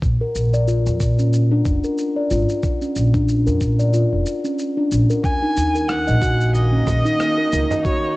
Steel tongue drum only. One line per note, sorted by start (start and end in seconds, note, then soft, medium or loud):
0.21 0.52 A#4 medium
0.54 0.67 D5 medium
0.68 1.17 F4 medium
1.19 1.32 C#4 medium
1.51 1.82 D4 medium
1.84 2.15 A#4 medium
2.16 2.30 D5 medium
2.31 2.80 F4 medium
2.81 2.95 C#4 medium
3.14 3.45 D4 medium
3.47 3.78 A#4 medium
3.79 3.93 D5 medium
3.93 4.43 F4 medium
4.44 4.58 C#4 medium
4.77 5.08 D4 medium
5.10 5.24 A#4 medium
5.42 5.73 D#4 medium
5.75 6.06 A#4 medium
6.07 6.21 D#5 medium
6.22 6.71 F#4 medium
6.73 6.86 C#4 medium
7.05 7.36 D#4 medium
7.38 7.69 A#4 medium
7.71 7.84 D#5 medium
7.85 8.16 F#4 medium